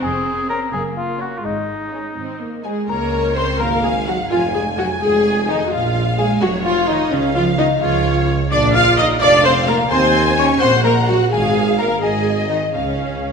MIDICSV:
0, 0, Header, 1, 9, 480
1, 0, Start_track
1, 0, Key_signature, -5, "major"
1, 0, Tempo, 476948
1, 20, Time_signature, 6, 3, 24, 8
1, 3861, Tempo, 466926
1, 11541, Tempo, 479616
1, 13558, End_track
2, 0, Start_track
2, 0, Title_t, "Celesta"
2, 0, Program_c, 0, 8
2, 27, Note_on_c, 0, 80, 70
2, 464, Note_off_c, 0, 80, 0
2, 507, Note_on_c, 0, 82, 65
2, 723, Note_off_c, 0, 82, 0
2, 740, Note_on_c, 0, 80, 59
2, 960, Note_off_c, 0, 80, 0
2, 978, Note_on_c, 0, 77, 51
2, 1199, Note_off_c, 0, 77, 0
2, 1226, Note_on_c, 0, 78, 51
2, 1445, Note_off_c, 0, 78, 0
2, 1459, Note_on_c, 0, 75, 47
2, 2629, Note_off_c, 0, 75, 0
2, 2671, Note_on_c, 0, 80, 48
2, 2893, Note_off_c, 0, 80, 0
2, 2913, Note_on_c, 0, 82, 72
2, 3354, Note_off_c, 0, 82, 0
2, 3397, Note_on_c, 0, 84, 71
2, 3613, Note_off_c, 0, 84, 0
2, 3623, Note_on_c, 0, 82, 73
2, 3844, Note_off_c, 0, 82, 0
2, 3863, Note_on_c, 0, 80, 68
2, 4086, Note_off_c, 0, 80, 0
2, 4124, Note_on_c, 0, 78, 65
2, 4338, Note_off_c, 0, 78, 0
2, 4362, Note_on_c, 0, 77, 71
2, 4579, Note_off_c, 0, 77, 0
2, 4603, Note_on_c, 0, 80, 68
2, 4820, Note_off_c, 0, 80, 0
2, 4838, Note_on_c, 0, 78, 67
2, 5058, Note_off_c, 0, 78, 0
2, 5074, Note_on_c, 0, 80, 67
2, 5521, Note_off_c, 0, 80, 0
2, 5561, Note_on_c, 0, 75, 67
2, 5782, Note_off_c, 0, 75, 0
2, 6279, Note_on_c, 0, 80, 74
2, 6502, Note_off_c, 0, 80, 0
2, 6521, Note_on_c, 0, 78, 75
2, 6743, Note_off_c, 0, 78, 0
2, 6758, Note_on_c, 0, 77, 73
2, 6980, Note_off_c, 0, 77, 0
2, 6993, Note_on_c, 0, 75, 73
2, 7217, Note_off_c, 0, 75, 0
2, 7239, Note_on_c, 0, 73, 77
2, 7460, Note_off_c, 0, 73, 0
2, 7473, Note_on_c, 0, 77, 75
2, 7696, Note_off_c, 0, 77, 0
2, 7718, Note_on_c, 0, 75, 78
2, 7939, Note_off_c, 0, 75, 0
2, 7946, Note_on_c, 0, 77, 76
2, 8395, Note_off_c, 0, 77, 0
2, 8673, Note_on_c, 0, 86, 92
2, 8895, Note_off_c, 0, 86, 0
2, 8912, Note_on_c, 0, 89, 93
2, 9134, Note_off_c, 0, 89, 0
2, 9160, Note_on_c, 0, 87, 94
2, 9377, Note_off_c, 0, 87, 0
2, 9392, Note_on_c, 0, 86, 97
2, 9612, Note_off_c, 0, 86, 0
2, 9635, Note_on_c, 0, 84, 83
2, 9851, Note_off_c, 0, 84, 0
2, 9870, Note_on_c, 0, 82, 84
2, 10088, Note_off_c, 0, 82, 0
2, 10120, Note_on_c, 0, 84, 87
2, 10559, Note_off_c, 0, 84, 0
2, 10601, Note_on_c, 0, 85, 84
2, 10816, Note_off_c, 0, 85, 0
2, 10833, Note_on_c, 0, 84, 89
2, 11051, Note_off_c, 0, 84, 0
2, 11071, Note_on_c, 0, 82, 85
2, 11289, Note_off_c, 0, 82, 0
2, 11315, Note_on_c, 0, 78, 78
2, 11532, Note_off_c, 0, 78, 0
2, 11559, Note_on_c, 0, 80, 81
2, 11989, Note_off_c, 0, 80, 0
2, 12028, Note_on_c, 0, 82, 74
2, 12241, Note_off_c, 0, 82, 0
2, 12263, Note_on_c, 0, 80, 69
2, 12701, Note_off_c, 0, 80, 0
2, 12733, Note_on_c, 0, 75, 59
2, 12956, Note_off_c, 0, 75, 0
2, 12988, Note_on_c, 0, 73, 55
2, 13558, Note_off_c, 0, 73, 0
2, 13558, End_track
3, 0, Start_track
3, 0, Title_t, "Violin section"
3, 0, Program_c, 1, 48
3, 486, Note_on_c, 1, 80, 58
3, 667, Note_off_c, 1, 80, 0
3, 1195, Note_on_c, 1, 82, 52
3, 1383, Note_off_c, 1, 82, 0
3, 1922, Note_on_c, 1, 80, 44
3, 2110, Note_off_c, 1, 80, 0
3, 2651, Note_on_c, 1, 80, 52
3, 2655, Note_off_c, 1, 80, 0
3, 2655, Note_on_c, 1, 80, 46
3, 2840, Note_off_c, 1, 80, 0
3, 2901, Note_on_c, 1, 82, 74
3, 3372, Note_off_c, 1, 82, 0
3, 3384, Note_on_c, 1, 84, 72
3, 3618, Note_off_c, 1, 84, 0
3, 3619, Note_on_c, 1, 82, 73
3, 3700, Note_off_c, 1, 82, 0
3, 3858, Note_on_c, 1, 80, 70
3, 4095, Note_off_c, 1, 80, 0
3, 4100, Note_on_c, 1, 78, 69
3, 4343, Note_off_c, 1, 78, 0
3, 4350, Note_on_c, 1, 77, 77
3, 4585, Note_off_c, 1, 77, 0
3, 4590, Note_on_c, 1, 80, 63
3, 4672, Note_off_c, 1, 80, 0
3, 4836, Note_on_c, 1, 78, 60
3, 4918, Note_off_c, 1, 78, 0
3, 5079, Note_on_c, 1, 80, 73
3, 5548, Note_off_c, 1, 80, 0
3, 5553, Note_on_c, 1, 75, 66
3, 5794, Note_on_c, 1, 77, 66
3, 5795, Note_off_c, 1, 75, 0
3, 6267, Note_off_c, 1, 77, 0
3, 6276, Note_on_c, 1, 80, 69
3, 6512, Note_off_c, 1, 80, 0
3, 6516, Note_on_c, 1, 78, 73
3, 6757, Note_off_c, 1, 78, 0
3, 6763, Note_on_c, 1, 77, 72
3, 6995, Note_off_c, 1, 77, 0
3, 7000, Note_on_c, 1, 75, 74
3, 7233, Note_off_c, 1, 75, 0
3, 7239, Note_on_c, 1, 73, 81
3, 7477, Note_off_c, 1, 73, 0
3, 7480, Note_on_c, 1, 77, 77
3, 7709, Note_on_c, 1, 75, 69
3, 7716, Note_off_c, 1, 77, 0
3, 7792, Note_off_c, 1, 75, 0
3, 7945, Note_on_c, 1, 77, 76
3, 8419, Note_off_c, 1, 77, 0
3, 8671, Note_on_c, 1, 86, 89
3, 8753, Note_off_c, 1, 86, 0
3, 8915, Note_on_c, 1, 89, 85
3, 8997, Note_off_c, 1, 89, 0
3, 9150, Note_on_c, 1, 87, 90
3, 9232, Note_off_c, 1, 87, 0
3, 9391, Note_on_c, 1, 86, 94
3, 9473, Note_off_c, 1, 86, 0
3, 9628, Note_on_c, 1, 84, 91
3, 9859, Note_off_c, 1, 84, 0
3, 9859, Note_on_c, 1, 82, 90
3, 9941, Note_off_c, 1, 82, 0
3, 10090, Note_on_c, 1, 84, 92
3, 10567, Note_off_c, 1, 84, 0
3, 10580, Note_on_c, 1, 85, 87
3, 10817, Note_off_c, 1, 85, 0
3, 10823, Note_on_c, 1, 84, 92
3, 11062, Note_off_c, 1, 84, 0
3, 11066, Note_on_c, 1, 82, 87
3, 11298, Note_off_c, 1, 82, 0
3, 11306, Note_on_c, 1, 78, 82
3, 11537, Note_on_c, 1, 80, 90
3, 11544, Note_off_c, 1, 78, 0
3, 12001, Note_off_c, 1, 80, 0
3, 12014, Note_on_c, 1, 82, 68
3, 12094, Note_off_c, 1, 82, 0
3, 12244, Note_on_c, 1, 80, 72
3, 12715, Note_off_c, 1, 80, 0
3, 12718, Note_on_c, 1, 75, 65
3, 12963, Note_on_c, 1, 73, 62
3, 12966, Note_off_c, 1, 75, 0
3, 13558, Note_off_c, 1, 73, 0
3, 13558, End_track
4, 0, Start_track
4, 0, Title_t, "Violin section"
4, 0, Program_c, 2, 48
4, 486, Note_on_c, 2, 73, 57
4, 489, Note_on_c, 2, 61, 53
4, 667, Note_off_c, 2, 73, 0
4, 669, Note_off_c, 2, 61, 0
4, 1213, Note_on_c, 2, 61, 49
4, 1213, Note_on_c, 2, 73, 50
4, 1393, Note_off_c, 2, 61, 0
4, 1393, Note_off_c, 2, 73, 0
4, 1932, Note_on_c, 2, 61, 45
4, 1932, Note_on_c, 2, 73, 46
4, 2116, Note_off_c, 2, 61, 0
4, 2116, Note_off_c, 2, 73, 0
4, 2669, Note_on_c, 2, 63, 45
4, 2672, Note_on_c, 2, 72, 42
4, 2848, Note_off_c, 2, 63, 0
4, 2849, Note_off_c, 2, 72, 0
4, 2908, Note_on_c, 2, 73, 65
4, 3583, Note_off_c, 2, 73, 0
4, 3634, Note_on_c, 2, 77, 76
4, 4349, Note_off_c, 2, 77, 0
4, 4350, Note_on_c, 2, 80, 75
4, 5769, Note_off_c, 2, 80, 0
4, 5800, Note_on_c, 2, 77, 75
4, 6506, Note_off_c, 2, 77, 0
4, 6529, Note_on_c, 2, 73, 71
4, 7227, Note_off_c, 2, 73, 0
4, 7239, Note_on_c, 2, 77, 76
4, 7940, Note_off_c, 2, 77, 0
4, 7964, Note_on_c, 2, 73, 81
4, 8664, Note_off_c, 2, 73, 0
4, 8683, Note_on_c, 2, 74, 85
4, 9380, Note_off_c, 2, 74, 0
4, 9402, Note_on_c, 2, 77, 92
4, 10094, Note_off_c, 2, 77, 0
4, 10105, Note_on_c, 2, 80, 105
4, 10810, Note_off_c, 2, 80, 0
4, 10832, Note_on_c, 2, 78, 83
4, 11545, Note_off_c, 2, 78, 0
4, 11547, Note_on_c, 2, 77, 84
4, 12238, Note_off_c, 2, 77, 0
4, 12254, Note_on_c, 2, 75, 74
4, 12959, Note_off_c, 2, 75, 0
4, 12979, Note_on_c, 2, 77, 54
4, 13558, Note_off_c, 2, 77, 0
4, 13558, End_track
5, 0, Start_track
5, 0, Title_t, "Oboe"
5, 0, Program_c, 3, 68
5, 27, Note_on_c, 3, 68, 85
5, 488, Note_off_c, 3, 68, 0
5, 500, Note_on_c, 3, 70, 77
5, 606, Note_off_c, 3, 70, 0
5, 726, Note_on_c, 3, 68, 75
5, 835, Note_off_c, 3, 68, 0
5, 978, Note_on_c, 3, 65, 63
5, 1214, Note_on_c, 3, 66, 60
5, 1229, Note_off_c, 3, 65, 0
5, 1387, Note_on_c, 3, 65, 42
5, 1402, Note_off_c, 3, 66, 0
5, 1459, Note_on_c, 3, 63, 59
5, 1474, Note_off_c, 3, 65, 0
5, 2669, Note_off_c, 3, 63, 0
5, 13558, End_track
6, 0, Start_track
6, 0, Title_t, "Viola section"
6, 0, Program_c, 4, 48
6, 0, Note_on_c, 4, 60, 84
6, 702, Note_off_c, 4, 60, 0
6, 735, Note_on_c, 4, 58, 59
6, 1452, Note_on_c, 4, 56, 44
6, 1456, Note_off_c, 4, 58, 0
6, 2118, Note_off_c, 4, 56, 0
6, 2174, Note_on_c, 4, 60, 59
6, 2403, Note_off_c, 4, 60, 0
6, 2424, Note_on_c, 4, 58, 53
6, 2665, Note_on_c, 4, 56, 42
6, 2666, Note_on_c, 4, 68, 64
6, 2667, Note_off_c, 4, 58, 0
6, 2890, Note_off_c, 4, 68, 0
6, 2902, Note_off_c, 4, 56, 0
6, 2909, Note_on_c, 4, 70, 79
6, 3376, Note_off_c, 4, 70, 0
6, 3382, Note_on_c, 4, 72, 84
6, 3613, Note_on_c, 4, 70, 87
6, 3622, Note_off_c, 4, 72, 0
6, 3855, Note_off_c, 4, 70, 0
6, 3855, Note_on_c, 4, 68, 78
6, 3938, Note_off_c, 4, 68, 0
6, 4106, Note_on_c, 4, 66, 73
6, 4188, Note_off_c, 4, 66, 0
6, 4342, Note_on_c, 4, 65, 80
6, 4425, Note_off_c, 4, 65, 0
6, 4590, Note_on_c, 4, 68, 81
6, 4672, Note_off_c, 4, 68, 0
6, 4826, Note_on_c, 4, 66, 80
6, 4908, Note_off_c, 4, 66, 0
6, 5070, Note_on_c, 4, 68, 89
6, 5543, Note_off_c, 4, 68, 0
6, 5554, Note_on_c, 4, 63, 77
6, 5720, Note_off_c, 4, 63, 0
6, 5731, Note_on_c, 4, 66, 55
6, 5789, Note_on_c, 4, 65, 68
6, 5799, Note_off_c, 4, 66, 0
6, 6268, Note_on_c, 4, 68, 83
6, 6274, Note_off_c, 4, 65, 0
6, 6350, Note_off_c, 4, 68, 0
6, 6508, Note_on_c, 4, 66, 90
6, 6591, Note_off_c, 4, 66, 0
6, 6746, Note_on_c, 4, 65, 91
6, 6986, Note_off_c, 4, 65, 0
6, 6990, Note_on_c, 4, 63, 84
6, 7232, Note_off_c, 4, 63, 0
6, 7242, Note_on_c, 4, 61, 88
6, 7472, Note_on_c, 4, 65, 84
6, 7478, Note_off_c, 4, 61, 0
6, 7554, Note_off_c, 4, 65, 0
6, 7712, Note_on_c, 4, 63, 95
6, 7794, Note_off_c, 4, 63, 0
6, 7954, Note_on_c, 4, 65, 84
6, 8424, Note_off_c, 4, 65, 0
6, 8668, Note_on_c, 4, 74, 101
6, 8892, Note_off_c, 4, 74, 0
6, 8905, Note_on_c, 4, 77, 109
6, 9142, Note_off_c, 4, 77, 0
6, 9147, Note_on_c, 4, 75, 104
6, 9229, Note_off_c, 4, 75, 0
6, 9383, Note_on_c, 4, 74, 121
6, 9619, Note_off_c, 4, 74, 0
6, 9623, Note_on_c, 4, 72, 108
6, 9706, Note_off_c, 4, 72, 0
6, 9855, Note_on_c, 4, 70, 96
6, 9937, Note_off_c, 4, 70, 0
6, 10101, Note_on_c, 4, 72, 100
6, 10572, Note_off_c, 4, 72, 0
6, 10581, Note_on_c, 4, 73, 100
6, 10663, Note_off_c, 4, 73, 0
6, 10820, Note_on_c, 4, 72, 106
6, 11056, Note_off_c, 4, 72, 0
6, 11070, Note_on_c, 4, 70, 104
6, 11152, Note_off_c, 4, 70, 0
6, 11310, Note_on_c, 4, 66, 94
6, 11541, Note_off_c, 4, 66, 0
6, 11550, Note_on_c, 4, 68, 93
6, 12008, Note_off_c, 4, 68, 0
6, 12024, Note_on_c, 4, 70, 88
6, 12250, Note_off_c, 4, 70, 0
6, 12252, Note_on_c, 4, 68, 79
6, 12719, Note_off_c, 4, 68, 0
6, 12735, Note_on_c, 4, 63, 70
6, 12815, Note_off_c, 4, 63, 0
6, 12972, Note_on_c, 4, 61, 61
6, 13558, Note_off_c, 4, 61, 0
6, 13558, End_track
7, 0, Start_track
7, 0, Title_t, "Cello section"
7, 0, Program_c, 5, 48
7, 29, Note_on_c, 5, 41, 76
7, 589, Note_off_c, 5, 41, 0
7, 736, Note_on_c, 5, 42, 60
7, 1308, Note_off_c, 5, 42, 0
7, 1450, Note_on_c, 5, 44, 61
7, 2030, Note_off_c, 5, 44, 0
7, 2185, Note_on_c, 5, 44, 55
7, 2635, Note_off_c, 5, 44, 0
7, 2667, Note_on_c, 5, 56, 54
7, 2890, Note_off_c, 5, 56, 0
7, 2914, Note_on_c, 5, 58, 75
7, 3379, Note_off_c, 5, 58, 0
7, 3399, Note_on_c, 5, 60, 70
7, 3625, Note_off_c, 5, 60, 0
7, 3643, Note_on_c, 5, 58, 74
7, 3870, Note_off_c, 5, 58, 0
7, 3872, Note_on_c, 5, 56, 72
7, 4108, Note_off_c, 5, 56, 0
7, 4120, Note_on_c, 5, 54, 65
7, 4202, Note_off_c, 5, 54, 0
7, 4359, Note_on_c, 5, 53, 76
7, 4589, Note_off_c, 5, 53, 0
7, 4597, Note_on_c, 5, 56, 70
7, 4680, Note_off_c, 5, 56, 0
7, 4839, Note_on_c, 5, 54, 65
7, 5071, Note_off_c, 5, 54, 0
7, 5075, Note_on_c, 5, 56, 72
7, 5546, Note_off_c, 5, 56, 0
7, 5562, Note_on_c, 5, 51, 67
7, 5644, Note_off_c, 5, 51, 0
7, 5805, Note_on_c, 5, 53, 67
7, 6272, Note_off_c, 5, 53, 0
7, 6290, Note_on_c, 5, 56, 71
7, 6519, Note_off_c, 5, 56, 0
7, 6533, Note_on_c, 5, 54, 80
7, 6765, Note_off_c, 5, 54, 0
7, 6766, Note_on_c, 5, 53, 71
7, 6849, Note_off_c, 5, 53, 0
7, 7002, Note_on_c, 5, 51, 67
7, 7085, Note_off_c, 5, 51, 0
7, 7241, Note_on_c, 5, 49, 89
7, 7323, Note_off_c, 5, 49, 0
7, 7480, Note_on_c, 5, 53, 78
7, 7712, Note_off_c, 5, 53, 0
7, 7717, Note_on_c, 5, 51, 70
7, 7799, Note_off_c, 5, 51, 0
7, 7958, Note_on_c, 5, 53, 74
7, 8426, Note_off_c, 5, 53, 0
7, 8675, Note_on_c, 5, 62, 99
7, 8896, Note_off_c, 5, 62, 0
7, 8914, Note_on_c, 5, 65, 91
7, 9152, Note_off_c, 5, 65, 0
7, 9160, Note_on_c, 5, 63, 81
7, 9394, Note_off_c, 5, 63, 0
7, 9404, Note_on_c, 5, 62, 99
7, 9630, Note_off_c, 5, 62, 0
7, 9638, Note_on_c, 5, 60, 91
7, 9869, Note_off_c, 5, 60, 0
7, 9874, Note_on_c, 5, 58, 85
7, 9956, Note_off_c, 5, 58, 0
7, 10120, Note_on_c, 5, 60, 101
7, 10582, Note_off_c, 5, 60, 0
7, 10596, Note_on_c, 5, 61, 82
7, 10825, Note_off_c, 5, 61, 0
7, 10837, Note_on_c, 5, 60, 90
7, 10919, Note_off_c, 5, 60, 0
7, 11066, Note_on_c, 5, 58, 77
7, 11148, Note_off_c, 5, 58, 0
7, 11314, Note_on_c, 5, 54, 76
7, 11397, Note_off_c, 5, 54, 0
7, 11549, Note_on_c, 5, 56, 82
7, 12007, Note_off_c, 5, 56, 0
7, 12019, Note_on_c, 5, 58, 64
7, 12099, Note_off_c, 5, 58, 0
7, 12255, Note_on_c, 5, 56, 71
7, 12721, Note_off_c, 5, 56, 0
7, 12735, Note_on_c, 5, 51, 61
7, 12969, Note_off_c, 5, 51, 0
7, 12979, Note_on_c, 5, 49, 61
7, 13558, Note_off_c, 5, 49, 0
7, 13558, End_track
8, 0, Start_track
8, 0, Title_t, "Double bass section"
8, 0, Program_c, 6, 48
8, 13, Note_on_c, 6, 29, 72
8, 581, Note_off_c, 6, 29, 0
8, 727, Note_on_c, 6, 30, 62
8, 1303, Note_off_c, 6, 30, 0
8, 1451, Note_on_c, 6, 32, 61
8, 2031, Note_off_c, 6, 32, 0
8, 2178, Note_on_c, 6, 32, 51
8, 2758, Note_off_c, 6, 32, 0
8, 2906, Note_on_c, 6, 37, 69
8, 3503, Note_off_c, 6, 37, 0
8, 3626, Note_on_c, 6, 32, 65
8, 4224, Note_off_c, 6, 32, 0
8, 4351, Note_on_c, 6, 41, 69
8, 4953, Note_off_c, 6, 41, 0
8, 5080, Note_on_c, 6, 41, 65
8, 5679, Note_off_c, 6, 41, 0
8, 5801, Note_on_c, 6, 34, 77
8, 6400, Note_off_c, 6, 34, 0
8, 6518, Note_on_c, 6, 29, 68
8, 7117, Note_off_c, 6, 29, 0
8, 7234, Note_on_c, 6, 37, 77
8, 7832, Note_off_c, 6, 37, 0
8, 7950, Note_on_c, 6, 37, 77
8, 8551, Note_off_c, 6, 37, 0
8, 8675, Note_on_c, 6, 34, 84
8, 9270, Note_off_c, 6, 34, 0
8, 9397, Note_on_c, 6, 29, 81
8, 9986, Note_off_c, 6, 29, 0
8, 10105, Note_on_c, 6, 39, 94
8, 10704, Note_off_c, 6, 39, 0
8, 10824, Note_on_c, 6, 34, 78
8, 11421, Note_off_c, 6, 34, 0
8, 11546, Note_on_c, 6, 32, 78
8, 12133, Note_off_c, 6, 32, 0
8, 12256, Note_on_c, 6, 32, 64
8, 12852, Note_off_c, 6, 32, 0
8, 12974, Note_on_c, 6, 37, 59
8, 13558, Note_off_c, 6, 37, 0
8, 13558, End_track
9, 0, Start_track
9, 0, Title_t, "Tuba"
9, 0, Program_c, 7, 58
9, 2906, Note_on_c, 7, 37, 69
9, 3503, Note_off_c, 7, 37, 0
9, 3626, Note_on_c, 7, 32, 67
9, 4224, Note_off_c, 7, 32, 0
9, 4349, Note_on_c, 7, 29, 67
9, 4952, Note_off_c, 7, 29, 0
9, 5075, Note_on_c, 7, 29, 68
9, 5676, Note_off_c, 7, 29, 0
9, 5801, Note_on_c, 7, 34, 70
9, 6400, Note_off_c, 7, 34, 0
9, 6524, Note_on_c, 7, 29, 70
9, 7119, Note_off_c, 7, 29, 0
9, 7242, Note_on_c, 7, 37, 77
9, 7836, Note_off_c, 7, 37, 0
9, 7959, Note_on_c, 7, 37, 80
9, 8556, Note_off_c, 7, 37, 0
9, 8675, Note_on_c, 7, 34, 84
9, 9271, Note_off_c, 7, 34, 0
9, 9392, Note_on_c, 7, 29, 81
9, 9984, Note_off_c, 7, 29, 0
9, 10107, Note_on_c, 7, 39, 90
9, 10705, Note_off_c, 7, 39, 0
9, 10829, Note_on_c, 7, 34, 76
9, 11424, Note_off_c, 7, 34, 0
9, 11549, Note_on_c, 7, 32, 74
9, 12134, Note_off_c, 7, 32, 0
9, 12254, Note_on_c, 7, 32, 70
9, 12851, Note_off_c, 7, 32, 0
9, 12973, Note_on_c, 7, 37, 58
9, 13558, Note_off_c, 7, 37, 0
9, 13558, End_track
0, 0, End_of_file